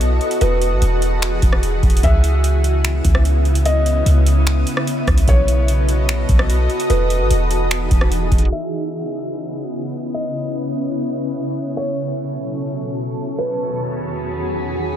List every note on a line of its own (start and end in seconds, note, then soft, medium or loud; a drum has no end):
0.00 0.19 B1 loud
0.00 0.37 B3 medium
0.00 2.00 F#4 medium
0.00 0.39 A4 medium
0.00 0.39 D#5 medium
0.00 closed hi-hat medium
0.21 closed hi-hat soft
0.31 closed hi-hat medium
0.41 0.73 E1 loud
0.41 2.02 E3 medium
0.41 2.02 G#4 medium
0.41 0.79 B4 loud
0.41 closed hi-hat medium
0.62 closed hi-hat medium
0.72 0.81 G#1 loud
0.82 1.40 E1 loud
0.82 closed hi-hat medium
1.02 closed hi-hat medium
1.22 finger snap loud
1.22 closed hi-hat medium
1.42 1.81 E1 loud
1.42 kick medium
1.42 closed hi-hat medium
1.53 cross-stick loud
1.63 closed hi-hat medium
1.83 2.02 E1 loud
1.83 kick loud
1.83 closed hi-hat soft
1.90 closed hi-hat medium
1.97 closed hi-hat medium
2.03 3.01 C#2 loud
2.03 5.24 C#3 medium
2.03 5.24 B3 medium
2.03 5.24 E4 loud
2.03 3.21 E5 loud
2.03 kick loud
2.03 closed hi-hat medium
2.24 closed hi-hat medium
2.44 closed hi-hat medium
2.64 closed hi-hat medium
2.84 finger snap loud
2.84 closed hi-hat medium
3.05 4.02 C#2 loud
3.05 kick medium
3.05 closed hi-hat medium
3.15 cross-stick loud
3.25 closed hi-hat medium
3.45 closed hi-hat soft
3.55 closed hi-hat medium
3.65 4.04 D#5 loud
3.65 closed hi-hat medium
3.86 closed hi-hat medium
4.06 4.64 C#2 loud
4.06 closed hi-hat medium
4.26 closed hi-hat medium
4.47 finger snap loud
4.47 closed hi-hat medium
4.67 closed hi-hat medium
4.77 cross-stick loud
4.87 closed hi-hat medium
5.07 5.27 C#2 loud
5.07 kick loud
5.07 cross-stick loud
5.07 closed hi-hat soft
5.18 closed hi-hat medium
5.28 6.25 B1 loud
5.28 6.88 B3 medium
5.28 8.49 F#4 medium
5.28 6.88 A4 medium
5.28 6.46 C#5 loud
5.28 6.88 D#5 medium
5.28 kick loud
5.28 closed hi-hat medium
5.48 closed hi-hat medium
5.68 closed hi-hat medium
5.89 closed hi-hat medium
6.09 finger snap loud
6.09 closed hi-hat medium
6.29 6.68 B1 loud
6.29 kick medium
6.29 closed hi-hat medium
6.39 cross-stick loud
6.50 closed hi-hat medium
6.70 closed hi-hat soft
6.80 closed hi-hat medium
6.90 7.22 E1 loud
6.90 8.50 E3 medium
6.90 8.50 D#4 medium
6.90 8.50 G#4 medium
6.90 7.28 B4 loud
6.90 closed hi-hat medium
7.10 closed hi-hat medium
7.20 7.30 G#1 loud
7.30 7.89 E1 loud
7.30 closed hi-hat medium
7.51 closed hi-hat medium
7.71 finger snap loud
7.71 closed hi-hat medium
7.91 8.30 E1 loud
7.91 kick medium
7.91 closed hi-hat medium
8.01 cross-stick loud
8.12 closed hi-hat medium
8.32 8.51 E1 loud
8.32 kick loud
8.32 closed hi-hat soft
8.38 closed hi-hat medium
8.45 closed hi-hat medium
8.52 11.73 C#3 medium
8.52 11.73 B3 medium
8.52 13.34 C#4 medium
8.52 11.73 E4 medium
8.52 9.70 E5 loud
10.14 10.52 D#5 loud
11.76 13.37 B2 medium
11.76 13.37 F#3 medium
11.76 13.37 A4 medium
11.76 12.94 C#5 loud
13.38 14.96 E2 medium
13.38 14.96 D#3 medium
13.38 14.96 F#4 medium
13.38 14.96 G#4 medium
13.38 13.77 B4 loud